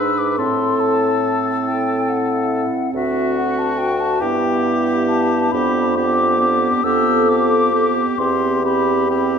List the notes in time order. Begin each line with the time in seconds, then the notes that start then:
Already playing: G#2 D4 B4 E6
0.18 D6
0.38 A2 C4 A4 C6
0.80 A5
1.64 E4 G5
2.09 F#5
2.94 D2 F#4 E5
3.37 F#5
3.59 A5
3.78 G5
4.00 A5
4.20 G2 B3 E4 G4 G5
5.09 A5
5.52 F2 B3 D4 G4 B5
5.95 B3 G4 D6
6.39 B3 G4
6.84 F2 B3 G4 A4 E6
7.28 B3 G4 D6
7.73 B3 G4
8.18 E2 C4 G4 C6
8.62 C4 G4 B5
9.08 C4 G4